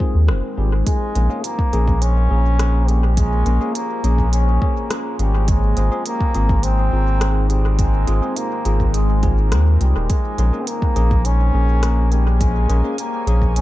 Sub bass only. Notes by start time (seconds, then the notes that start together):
0.15 D#2
0.29 F1
0.58 G#1
1.16 A#1
1.73 A#1
2.31 A#1
3.46 A#1
4.04 A#1
5.19 G#1
5.77 G#1
6.35 G#1
6.93 G#1
8.08 G#1
8.65 G#1
9.52 D#2
9.81 C2
9.96 D#1
10.38 A#1
10.96 A#1
11.54 A#1
12.70 A#1
13.27 A#1